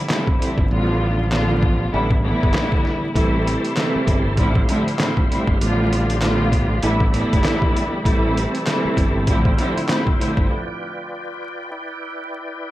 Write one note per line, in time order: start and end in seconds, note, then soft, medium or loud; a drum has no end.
0.09 0.37 A2 medium
0.09 0.38 D3 medium
0.09 0.38 F3 medium
0.09 0.38 G3 medium
0.09 0.38 C4 medium
0.09 0.39 E4 medium
0.09 snare loud
0.09 clap medium
0.09 closed hi-hat medium
0.27 kick loud
0.39 0.68 A2 medium
0.39 0.68 D3 medium
0.39 0.68 F3 medium
0.39 0.68 G3 medium
0.39 0.68 C4 medium
0.39 0.69 E4 medium
0.39 closed hi-hat medium
0.58 0.68 G1 medium
0.58 kick medium
0.70 1.89 A1 loud
0.70 1.28 A2 loud
0.70 1.28 D3 medium
0.70 1.28 F3 medium
0.70 1.28 G3 medium
0.70 1.28 B3 medium
0.70 1.28 F4 loud
1.32 1.90 A2 loud
1.32 1.91 D3 medium
1.32 1.94 F3 medium
1.32 1.91 G3 medium
1.32 1.91 B3 medium
1.32 1.94 F4 loud
1.32 snare loud
1.32 clap medium
1.62 kick medium
1.92 2.33 A1 loud
1.92 2.14 A2 loud
1.92 2.14 D3 medium
1.92 2.14 E3 medium
1.92 2.15 G3 medium
1.92 2.15 B3 medium
1.92 2.15 E4 loud
2.11 kick medium
2.23 3.09 A2 loud
2.23 3.09 D3 medium
2.23 3.09 E3 medium
2.23 3.10 G3 medium
2.23 3.10 B3 medium
2.23 3.10 E4 loud
2.43 2.53 G1 medium
2.43 kick medium
2.54 snare loud
2.54 clap medium
2.72 kick loud
2.85 snare soft
3.13 3.55 A1 loud
3.13 3.72 C3 medium
3.13 3.72 E3 medium
3.13 3.72 G3 medium
3.13 3.72 A3 medium
3.13 3.72 E4 loud
3.13 9.25 G4 medium
3.13 4.37 E5 medium
3.13 4.38 A5 medium
3.13 5.59 C6 medium
3.13 kick loud
3.13 closed hi-hat loud
3.47 closed hi-hat medium
3.65 closed hi-hat medium
3.77 4.38 C3 medium
3.77 4.38 E3 medium
3.77 4.37 G3 medium
3.77 4.39 A3 medium
3.77 4.38 E4 loud
3.77 snare loud
3.77 clap medium
3.77 closed hi-hat loud
3.95 muted fingered electric bass stroke soft
4.07 4.38 G1 loud
4.07 kick medium
4.07 closed hi-hat medium
4.37 4.63 A1 loud
4.37 4.60 A2 medium
4.37 4.60 D3 medium
4.37 4.60 F3 medium
4.37 4.60 G3 medium
4.37 4.60 C4 medium
4.37 4.60 E4 loud
4.37 5.59 E5 medium
4.37 6.81 F5 medium
4.37 kick medium
4.37 closed hi-hat medium
4.55 kick loud
4.68 4.97 A2 loud
4.68 4.97 D3 medium
4.68 4.97 F3 medium
4.68 4.97 G3 medium
4.68 4.97 C4 medium
4.68 4.97 E4 loud
4.68 closed hi-hat medium
4.88 closed hi-hat medium
4.99 5.27 A2 medium
4.99 5.27 D3 medium
4.99 5.27 F3 medium
4.99 5.28 G3 medium
4.99 5.28 C4 medium
4.99 5.28 E4 medium
4.99 snare loud
4.99 clap medium
4.99 closed hi-hat medium
5.17 kick medium
5.28 5.58 A2 medium
5.28 5.58 D3 medium
5.28 5.58 F3 medium
5.28 5.58 G3 medium
5.28 5.58 C4 medium
5.28 5.58 E4 medium
5.28 closed hi-hat medium
5.47 5.58 G1 medium
5.47 kick medium
5.59 6.79 A1 loud
5.59 6.17 A2 loud
5.59 6.17 D3 medium
5.59 6.17 F3 medium
5.59 6.17 G3 medium
5.59 6.18 B3 medium
5.59 6.18 F4 loud
5.59 8.03 D5 medium
5.59 6.82 B5 medium
5.59 closed hi-hat medium
5.93 closed hi-hat medium
6.10 closed hi-hat medium
6.22 6.80 A2 loud
6.22 6.80 D3 medium
6.22 6.83 F3 medium
6.22 6.81 G3 medium
6.22 6.81 B3 medium
6.22 6.84 F4 loud
6.22 snare loud
6.22 clap medium
6.22 closed hi-hat loud
6.52 kick medium
6.52 closed hi-hat medium
6.81 7.22 A1 loud
6.81 7.04 A2 loud
6.81 7.04 D3 medium
6.81 7.04 E3 medium
6.81 7.04 G3 medium
6.81 7.04 B3 medium
6.81 7.05 E4 loud
6.81 8.03 E5 medium
6.81 8.04 B5 medium
6.81 closed hi-hat medium
7.00 kick loud
7.13 7.99 A2 loud
7.13 7.99 D3 medium
7.13 7.99 E3 medium
7.13 7.99 G3 medium
7.13 7.99 B3 medium
7.13 8.00 E4 loud
7.13 closed hi-hat medium
7.33 7.43 G1 medium
7.33 kick loud
7.33 closed hi-hat medium
7.44 snare loud
7.44 clap medium
7.44 closed hi-hat medium
7.62 kick loud
7.77 closed hi-hat medium
8.03 8.45 A1 loud
8.03 8.61 C3 medium
8.03 8.62 E3 medium
8.03 8.62 G3 medium
8.03 8.62 A3 medium
8.03 8.62 E4 loud
8.03 10.47 C5 medium
8.03 10.47 E5 medium
8.03 9.26 A5 medium
8.03 kick loud
8.03 closed hi-hat loud
8.37 closed hi-hat medium
8.55 closed hi-hat medium
8.67 9.28 C3 loud
8.67 9.28 E3 medium
8.67 9.27 G3 loud
8.67 9.28 A3 medium
8.67 9.28 E4 loud
8.67 snare loud
8.67 clap medium
8.67 closed hi-hat medium
8.85 muted fingered electric bass stroke soft
8.97 9.27 G1 loud
8.97 kick medium
8.97 closed hi-hat medium
9.27 9.52 A1 loud
9.27 9.50 A2 medium
9.27 9.50 D3 medium
9.27 9.50 F3 medium
9.27 9.50 G3 medium
9.27 9.50 C4 medium
9.27 9.50 E4 loud
9.27 11.71 F4 medium
9.27 12.71 G5 medium
9.27 kick medium
9.27 closed hi-hat medium
9.45 kick loud
9.57 9.87 A2 loud
9.57 9.87 D3 medium
9.57 9.87 F3 medium
9.57 9.87 G3 medium
9.57 9.87 C4 medium
9.57 9.87 E4 loud
9.57 closed hi-hat medium
9.78 closed hi-hat medium
9.89 10.17 A2 medium
9.89 10.17 D3 medium
9.89 10.17 F3 medium
9.89 10.18 G3 medium
9.89 10.18 C4 medium
9.89 10.18 E4 medium
9.89 snare loud
9.89 clap medium
9.89 closed hi-hat medium
10.07 kick medium
10.18 10.48 A2 medium
10.18 10.48 D3 medium
10.18 10.48 F3 medium
10.18 10.48 G3 medium
10.18 10.48 C4 medium
10.18 10.48 E4 medium
10.18 closed hi-hat medium
10.37 10.48 G1 loud
10.37 kick medium
10.51 12.71 B4 medium
10.51 11.70 D5 medium
11.71 12.71 E4 medium
11.71 12.71 D5 medium